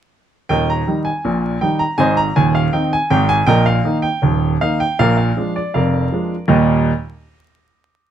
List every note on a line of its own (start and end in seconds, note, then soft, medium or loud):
0.49 0.81 D#1 medium
0.49 0.81 D#2 medium
0.49 0.67 A#4 medium
0.49 0.67 D#5 medium
0.49 0.68 G5 medium
0.70 0.99 A#5 medium
0.87 1.08 D#3 soft
0.87 1.08 G3 soft
0.87 1.08 D#4 soft
1.05 1.58 G#5 medium
1.25 1.56 A#1 medium
1.25 1.56 A#2 medium
1.61 1.82 D#3 soft
1.61 1.82 G3 soft
1.61 1.82 D#4 soft
1.61 1.80 G5 medium
1.79 1.98 A#5 medium
1.98 2.28 G#1 medium
1.98 2.28 G#2 medium
1.98 2.17 C5 medium
1.98 2.17 D#5 medium
1.98 2.17 G#5 loud
2.17 2.36 A#5 medium
2.36 2.66 D#1 medium
2.36 2.66 D#2 medium
2.36 2.55 G#5 medium
2.55 2.73 F5 medium
2.73 2.94 D#3 soft
2.73 2.94 C4 soft
2.73 2.94 D#4 soft
2.73 2.92 G5 medium
2.93 3.11 G#5 medium
3.10 3.40 G#1 medium
3.10 3.41 G#2 medium
3.10 3.29 G5 loud
3.29 3.48 G#5 loud
3.46 3.79 A#1 medium
3.46 3.79 A#2 medium
3.46 3.66 A#4 medium
3.46 3.65 D#5 medium
3.46 3.66 G5 loud
3.66 3.96 F5 medium
3.84 4.05 D#3 soft
3.84 4.05 A#3 soft
3.84 4.06 D#4 soft
4.02 4.48 G5 medium
4.22 4.54 D#1 medium
4.22 4.55 D#2 medium
4.61 4.81 D#3 soft
4.61 4.82 A#3 soft
4.61 4.82 D#4 medium
4.61 4.79 F5 medium
4.80 4.98 G5 medium
4.99 5.31 A#1 medium
4.99 5.30 A#2 medium
4.99 5.17 A#4 medium
4.99 5.17 D5 medium
4.99 5.16 F5 loud
5.17 5.52 F5 medium
5.37 5.57 F3 soft
5.37 5.57 G#3 soft
5.37 5.57 D4 soft
5.56 5.74 D5 medium
5.74 6.06 F1 medium
5.74 6.06 F2 medium
5.74 6.46 A#4 medium
5.74 6.46 D5 medium
5.74 6.34 F5 medium
6.12 6.33 F3 soft
6.12 6.33 G#3 soft
6.12 6.34 D4 soft
6.48 6.90 D#2 medium
6.48 6.90 A#2 medium
6.48 6.90 G3 medium
6.48 6.91 A#3 medium
6.48 6.91 D#4 medium
6.48 6.91 G4 medium
6.48 6.91 D#5 medium